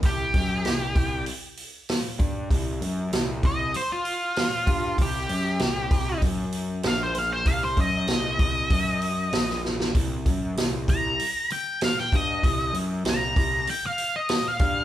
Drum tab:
HH |o-o-o-o-o-o-o-o-|o-o-o-o-o-o-o-o-|o-o-o-o-o-o-o-o-|o-o-o-o-o-o-o---|
SD |----o-------o---|----o-------o---|----o-------o---|----o-------oooo|
BD |o-o---o-------o-|o-----o-------o-|o-----o-o-------|o-o---o-o-------|

HH |o-o-o-o-o-o-o-o-|o-o-o-o-o-o-o-o-|
SD |----o-------oo--|----o-------o---|
BD |o-o---o-------o-|o-----o-------o-|